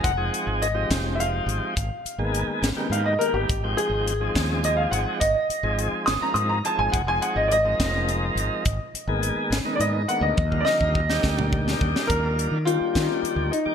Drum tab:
HH |x-x-x-x-x-x-|x-x-x-x-x-x-|x-x-x-x-x-x-|x-x-x-x-x-x-|
SD |------o-----|------o-----|------o-----|------o-----|
T1 |------------|------------|------------|------------|
T2 |------------|------------|------------|------------|
BD |o-----o-----|o-----------|o-----o-----|o-----------|

HH |x-x-x-x-x-x-|x-x-x-x-x-x-|------------|x-x-x-x-x-x-|
SD |------o-----|------o-----|--o--oo--o-o|------o-----|
T1 |------------|------------|o-----------|------------|
T2 |------------|------------|-------o----|------------|
BD |o-----o-----|o-----------|oo-oo-o-o-o-|o-----o-----|